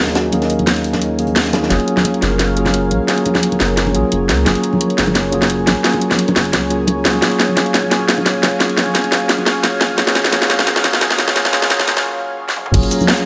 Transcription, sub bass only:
1.70 F#1
2.22 F#1
2.91 A#1
3.60 F#1
3.95 A#1
4.12 F#1
4.29 C#2
4.46 F#1
4.98 F#1
5.67 A#1
6.36 F#1
6.53 C#2
7.05 C#2
7.22 D#1
7.74 D#1
8.43 F#1
9.12 D#1
9.46 F#1
9.63 D#1
9.81 A#1
9.98 D#1
10.50 D#1
11.19 F#1
11.88 D#1
12.74 F#1

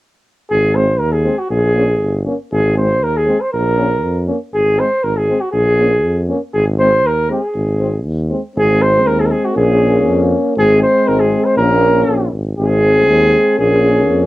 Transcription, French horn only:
0.75 C4
1.25 C4
1.76 C#4
2.26 C#4
2.78 C4
3.27 C4
3.77 C#4
4.27 C#4
4.77 C4
5.28 C4
5.79 C#4
6.29 C#4
6.80 C4
7.30 C4
7.80 C4
8.30 C4
8.55 C4
9.56 C#4
10.57 C4
11.58 C#4
12.59 C4
13.59 C#4

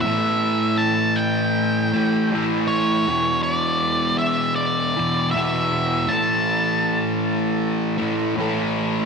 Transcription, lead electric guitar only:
0.01 E5
0.78 A5
1.16 G5
2.68 C#5
3.43 C#5
3.54 D5
4.19 E5
4.56 D5
5.31 E5
6.09 A5

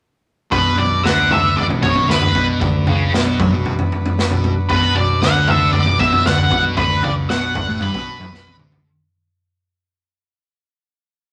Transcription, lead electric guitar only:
0.52 B4
0.78 D5
1.03 F#5
1.32 E5
1.57 D5
1.83 C#5
2.10 B4
4.69 B4
4.95 D5
5.22 F#5
5.48 E5
5.72 D5
6.00 E5
6.26 F#5
6.78 B4
7.04 D5
7.30 F#5
7.83 B4

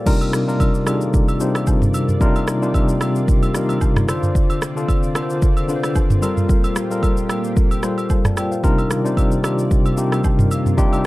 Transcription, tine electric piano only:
Already playing: A4 D5
0.06 C3 G3 D4 D#4 F4 A#4
0.47 C3 G3 D4 D#4 F4 A#4
0.86 C3 G3 D4 D#4 F4 G#4
0.94 A4
1.40 C3 G3 D4 D#4 F4 C5
2.20 C3 G3 D4 D#4 F4 A#4
2.62 C3 G3 D4 D#4 F4 G4
3.54 C3 G3 D4 D#4 F4 A#4
4.08 D3 D4 F4 C5
4.76 D3 D4 F4 A4
5.15 D3 D4 F4 A#4
5.22 C5
5.68 D3 D4 F4 B4
5.76 C5
6.22 G3 F4 A4 A#4
6.90 G3 F4 A4 A#4
7.83 G3 F4 A4 C5
8.25 D5 A5
8.37 D5 G5
8.52 C5 F5
8.63 C3 G3 D4 D#4 F4 A#4
9.04 C3 G3 D4 D#4 F4 C5
9.43 C3 G3 D4 D#4 F4 G4
9.97 C3 G3 D4 D#4 F4 G4
10.77 C3 G3 D4 D#4 F4 G4

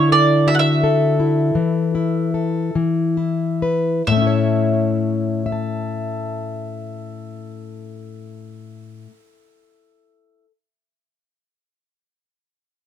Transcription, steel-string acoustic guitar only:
Already playing: D3 E4 A4
0.12 A4
0.47 F#4
0.84 A4
1.20 E4
1.55 E3
1.95 E4
2.34 A4
2.75 E3
3.17 E4
3.62 B4
4.07 A2
4.12 A3
4.17 C#4
4.22 E4
4.27 C#5
5.46 E5
5.52 A5

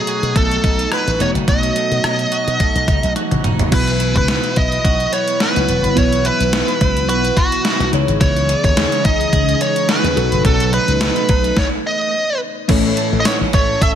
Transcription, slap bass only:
0.23 B2
0.36 B1
0.64 B1
1.07 A1
1.20 E1
1.35 F#1
1.48 B1
1.91 B2
2.04 B2
2.47 B2
2.75 B1
2.88 C#2
3.03 B1
3.31 A1
3.44 E1
3.60 F#1
3.72 B1
4.15 C#2
4.57 B1
4.85 B1
5.56 C#2
5.69 E1
5.84 F#1
5.97 B1
6.40 B1
6.81 C#2
7.08 B1
7.80 B1
7.93 C#2
8.08 G#1
8.21 C#2
8.64 D#2
9.05 C#2
9.33 C#2
10.04 D#2
10.16 B1
10.32 F#1
10.45 B1
10.88 C#2
11.29 B1
12.69 A1
13.12 A1
13.41 A1
13.54 A2

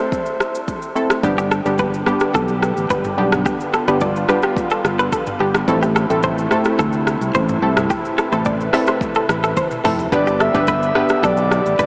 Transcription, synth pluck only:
Already playing: A3 C4 E4 A4
0.95 A3 C4 E4 A4
1.23 G3 B3 D4 G4
1.65 G3 B3 D4 G4
2.06 G3 B3 D4 G4
3.18 G3 B3 D4 G4
3.88 G3 B3 D4 G4
4.29 G3 B3 D4 G4
5.40 G3 B3 D4 G4
5.68 A3 C4 E4 A4
6.10 A3 C4 E4 A4
6.51 A3 C4 E4 A4
7.62 A3 C4 E4 A4
8.32 A3 C4 E4 A4
8.73 A3 C4 E4 A4
9.84 A3 C4 E4 A4
10.12 B3 D4 G4 B4
10.54 B3 D4 G4 B4
10.95 B3 D4 G4 B4

